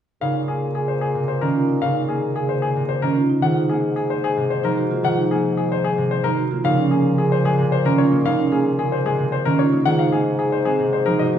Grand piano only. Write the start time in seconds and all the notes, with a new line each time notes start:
0.21 F5
0.48 G#4
0.75 G#4
0.88 C5
1.01 G#4
1.28 C5
1.41 A#4
1.82 F5
2.09 G#4
2.36 G#4
2.49 C5
2.62 G#4
2.89 C5
3.02 A#4
3.42 F#5
3.69 G#4
3.96 G#4
4.10 C5
4.24 G#4
4.50 C5
4.65 A#4
5.05 F#5
5.31 G#4
5.57 G#4
5.72 C5
5.84 G#4
6.11 C5
6.24 A#4
6.65 F5
6.91 G#4
7.18 G#4
7.32 C5
7.45 G#4
7.72 C5
7.86 A#4
7.98 C#5
8.26 F5
8.52 G#4
8.79 G#4
8.92 C5
9.06 G#4
9.32 C5
9.45 A#4
9.59 C#5
9.86 F#5
9.99 F5
10.12 G#4
10.39 G#4
10.52 C5
10.65 G#4
10.93 C5
11.06 A#4
11.19 D#5